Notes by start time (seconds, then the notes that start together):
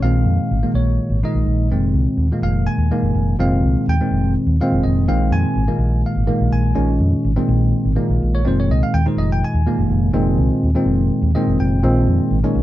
0.02 A#1 A#2 D#3 G#3 C4 F5
0.25 F2
0.38 muted fingered electric bass stroke
0.51 G#1
0.63 A#2 D#3 G#3 A#3
0.74 A#1 C#5
1.10 G#1
1.23 A#2 D#3 G#3 D#4 D#5, muted fingered electric bass stroke
1.34 A#1
1.46 A#1
1.70 F1 A#2 D#3 G#3 C4
1.94 C2
2.06 muted fingered electric bass stroke
2.17 D#2
2.31 A#2 D#3 G#3 A#3
2.42 F1 F5
2.67 G#5
2.78 D#2
2.90 A#2 D#3 G#3 A#3, muted fingered electric bass stroke
3.02 F1
3.14 F1
3.39 F1 A#2 D#3 G#3 C4 F5
3.63 C2
3.75 muted fingered electric bass stroke
3.88 D#2 G5
4.01 A#2 D#3 G#3 C4
4.11 F1
4.46 D#2
4.60 A#2 D#3 G#3 C4 F5, muted fingered electric bass stroke
4.72 F1
4.83 F1 D#5
5.08 A#1 A#2 D#3 G#3 C4 F5
5.31 F2 G#5
5.44 muted fingered electric bass stroke
5.55 G#1
5.68 A#2 D#3 G#3 A#3
5.78 A#1
6.06 F5
6.16 G#1
6.27 A#2 D#3 G#3 A#3, muted fingered electric bass stroke
6.40 A#1
6.52 A#1 G#5
6.75 A#1 A#2 D#3 G#3 C#4
7.00 F2
7.13 muted fingered electric bass stroke
7.24 G#1
7.36 A#2 D#3 G#3 C4
7.49 A#1
7.85 G#1
7.96 A#2 D#3 G#3 A#3, muted fingered electric bass stroke
8.09 A#1
8.22 A#1
8.35 C#5
8.44 F1 A#2 D#3 G#3 C4 C5
8.60 C#5
8.69 C2 D#5
8.82 F5, muted fingered electric bass stroke
8.94 D#2 G5
9.06 A#2 D#3 G#3 D#4 C5
9.17 F1 D#5
9.32 G5
9.44 G#5
9.54 D#2
9.66 A#2 D#3 G#3 A#3, muted fingered electric bass stroke
9.78 F1
9.89 F1
10.13 F1 A#2 D#3 G#3 C4
10.38 C2
10.51 muted fingered electric bass stroke
10.63 D#2
10.74 A#2 D#3 G#3 C4
10.86 F1
11.22 D#2
11.34 A#2 D#3 G#3 C4 D#5, muted fingered electric bass stroke
11.47 F1
11.60 F1 G5
11.82 A#1 A#2 D#3 G#3 C4
12.07 F2
12.19 muted fingered electric bass stroke
12.30 G#1
12.43 A#2 D#3 G#3 C#4
12.55 A#1